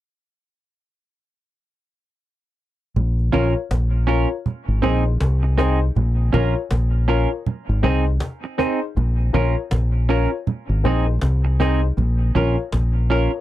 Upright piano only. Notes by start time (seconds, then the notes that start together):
3.32 F4 A#4 C#5
4.07 F4 A#4 C#5
4.82 D#4 G#4 C5
5.06 G#4 C5
5.58 D#4 G#4 C5
6.33 F4 A#4 C#5
7.08 F4 A#4 C#5
7.32 A#4 C#5
7.83 D#4 G#4 C5
8.58 D#4 G#4 C5
9.33 F4 A#4 C#5
10.09 F4 A#4 C#5
10.84 D#4 G#4 C5
11.07 G#4 C5
11.60 D#4 G#4 C5
12.35 F4 A#4 C#5
13.10 F4 A#4 C#5
13.34 A#4 C#5